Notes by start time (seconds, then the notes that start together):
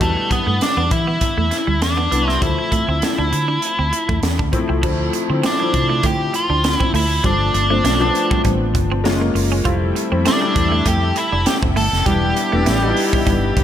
0.00 E2 G3 A3 B3 D4 E4, kick, closed hi-hat
0.17 muted clean electric guitar stroke
0.30 G3 B3, kick, closed hi-hat
0.47 G2 A3
0.61 D4, snare, closed hi-hat
0.77 E2 B3
0.91 E3 E4, muted clean electric guitar stroke, kick, closed hi-hat
1.07 B3
1.21 kick, closed hi-hat
1.38 E2 A3
1.51 muted clean electric guitar stroke, snare, closed hi-hat
1.67 D2 G3
1.81 E2 D4, snare, closed hi-hat
1.97 B3
2.11 C2 G3 B3 D4 E4, muted clean electric guitar stroke, closed hi-hat
2.28 C4 E4, snare
2.41 D2 F3 A3 C4 E4, kick, closed hi-hat
2.59 muted clean electric guitar stroke
2.72 A3, kick, closed hi-hat
2.88 D2 C4
3.02 snare, closed hi-hat
3.18 D2 D4
3.33 D3, muted clean electric guitar stroke, closed hi-hat
3.48 D4
3.62 closed hi-hat
3.79 D2 C4
3.93 muted clean electric guitar stroke, closed hi-hat
4.09 E2 A3, kick
4.23 E2, snare, closed hi-hat
4.39 D2 D4, kick
4.52 F3 A3 C4 E4, muted clean electric guitar stroke, kick, closed hi-hat
4.69 C2 C4
4.83 D2 F3 A3 C4 D4 E4, kick, crash
5.13 muted clean electric guitar stroke, closed hi-hat
5.29 D3 F3 A3 C4 E4
5.43 C4 D4, snare, closed hi-hat
5.60 F3 A3 C4 E4, muted clean electric guitar stroke
5.74 C3, kick, closed hi-hat
5.89 A3
6.03 D3 A3 G4, kick, closed hi-hat
6.34 F4, muted clean electric guitar stroke, closed hi-hat
6.50 D2 D4
6.64 muted clean electric guitar stroke, snare, closed hi-hat
6.75 E4
6.80 C4, kick
6.93 D2 A3 E4, open hi-hat
7.23 G1 F3 G3 A3 C4 D4, kick, closed hi-hat
7.54 G1, muted clean electric guitar stroke, closed hi-hat
7.70 F3 A3 C4 D4
7.84 B1 A3, snare, closed hi-hat
7.99 F3 A3 B3 D4, muted clean electric guitar stroke
8.07 C4
8.15 closed hi-hat
8.31 G3, kick
8.45 A1 G3, kick, closed hi-hat
8.75 G1, muted clean electric guitar stroke, kick, closed hi-hat
8.92 C4
9.04 F#1 G#3 A#3 C#4 F4, snare, closed hi-hat
9.21 A#3
9.35 F#1, muted clean electric guitar stroke, open hi-hat
9.52 C#4
9.64 F1 G3 A3 C4 E4 F4 A4 E5 G5, kick, closed hi-hat
9.96 muted clean electric guitar stroke, closed hi-hat
10.11 F2 G3 A3 C4 E4
10.25 C4 D4, snare, closed hi-hat
10.42 G3 A3 C4 E4, muted clean electric guitar stroke
10.56 E2, kick, closed hi-hat
10.72 A3
10.86 F2 A3 G4, kick, closed hi-hat
11.16 E4, muted clean electric guitar stroke, closed hi-hat
11.32 F1 D4
11.46 G4, muted clean electric guitar stroke, snare, closed hi-hat
11.62 F1 C4, kick
11.76 G1 A3 A4, open hi-hat
11.93 F1, snare
12.06 E1 G3 B3 D4 E4 G4 B4 D5, kick, closed hi-hat
12.36 muted clean electric guitar stroke, closed hi-hat
12.52 E1 G3 A3 B3 D4 E4
12.66 A1 A3, snare, closed hi-hat
12.82 G3 B3 D4 D#4, muted clean electric guitar stroke
12.90 E4
12.97 open hi-hat
13.13 G3, kick
13.27 G1 G3, kick, closed hi-hat
13.57 F1, muted clean electric guitar stroke, kick, closed hi-hat